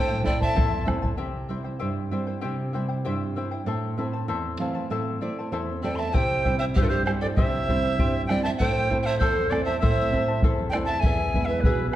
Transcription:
Already playing: A2 E4 A4 C5 E5 G5 A5
0.23 A3 C4 E4 C5 D5 E5 G5 A5, bombo low
0.40 E4 C5 E5 A5, bombo low
0.55 E2 E4 A4 C5 E5 A5, bombo low
0.85 A3 C4 E4 C5 E5 A5, bombo rim, bombo low
1.02 E4 C5 A5, bombo low
1.17 C3 E4 G4 C5 E5 G5
1.49 G3 C4 E4 C5 E5 G5
1.64 E4 C5 G5
1.79 G2 E4 G4 C5 E5 G5
2.11 G3 C4 E4 C5 E5 G5
2.27 E4 C5 G5
2.41 C3 E4 G4 C5 E5 G5
2.73 G3 C4 E4 C5 E5 G5
2.88 E4 C5 G5
3.05 G2 E4 G4 C5 E5 G5
3.36 G3 C4 E4 C5 E5 G5
3.51 E4 C5 G5
3.66 A2 E4 A4 C5 E5 A5
3.97 A3 C4 E4 C5 E5 A5
4.13 E4 C5 A5
4.28 E2 E4 A4 C5 E5 A5
4.60 E3 A3 C4 E4 C5 E5 F5 A5
4.75 E4 C5 A5
4.90 A2 E4 A4 C5 E5 A5
5.21 A3 C4 E4 C5 D5 E5 A5
5.39 E4 C5 A5
5.52 E2 E4 A4 C5 E5 A5
5.83 A3 C4 E4 A4 C5 D5 E5 G5 A5
5.94 E5 A5 C6
5.99 E4 C5 A5
6.12 C3 E4 G4 C5 E5 G5, bombo low
6.44 G3 C4 E4 C5 E5 G5, bombo low
6.59 E4 C5 E5 G5
6.75 G2 E4 G4 C5 E5 G5, bombo low
6.82 F4 A4
6.89 G4 C5
7.05 G3 C4 E4 G4 C5 E5 G5, bombo rim
7.20 E4 A4 C5 D5 G5
7.35 C3 E4 G4 C5 E5 G5, bombo low
7.68 G3 C4 E4 C5 E5 G5, bombo low
7.84 E4 C5 G5
7.99 G2 E4 G4 C5 E5 G5, bombo low
8.26 D5 E5 G5, bombo rim
8.30 G3 C4 E4 C5 G5
8.43 E4 C5 E5 G5 A5
8.57 E4 A4 C5 E5 G5, bombo low
8.61 A2 C5 A5
8.90 A3 C4 E4 C5 E5 A5, bombo low
9.02 C5 E5 G5 A5
9.07 E4
9.18 E2 E4 A4 C5 E5 A5, bombo low
9.50 A3 C4 E4 A4 C5 D5 E5 A5, bombo rim
9.64 C5 E5 A5
9.68 E4
9.79 E4 A4 C5 E5
9.83 A2 A5, bombo low
10.12 A3 C4 E4 C5 E5 A5, bombo low
10.28 E4 C5 A5
10.42 E2 E4 A4 C5 E5 A5, bombo low
10.69 D5 G5
10.73 A3 C4 E4 C5 E5 A5, bombo rim
10.85 E5 A5
10.89 E4 C5 A5
10.99 E5 G#5, bombo low
11.04 E2 E4 G#4 B4 E5 G#5
11.34 G#3 B3 E4 B4 E5 G#5, bombo low
11.45 B4 E5
11.49 E4 B4 G#5
11.60 G#4 B4, bombo low
11.65 B2 E4 G#4 B4 E5 G#5
11.90 B4

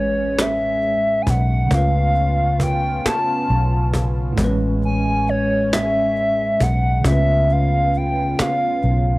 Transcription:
Already playing: A1 A2 G#3 C#4 B4 C#5
0.39 E5, cajon slap
0.82 cajon slap
1.22 G#5
1.27 B1 F#5, cajon bass
1.66 C#3 A3
1.70 C#2 C#3 B3 C#4 F4 F5, cajon bass
1.75 F4 B4
2.15 cajon slap
2.60 G5, cajon bass
3.06 A5, muted fingered electric bass stroke, cajon slap
3.49 B1, cajon slap
3.94 cajon bass
4.33 A2
4.37 A1 G#3 B3 C#4, cajon bass
4.44 C#4 B4
4.82 G#5, cajon slap
5.27 C#5, cajon slap
5.73 E5, cajon slap
6.16 cajon slap
6.60 B1 F#5, cajon bass
7.00 C#3 A3 B3 C#4 F4
7.04 C#2 C#4 F4 E5, cajon bass
7.11 B4
7.49 F5, cajon slap
7.94 G5, cajon slap
8.39 F5, muted fingered electric bass stroke, cajon slap
8.82 B1, cajon slap

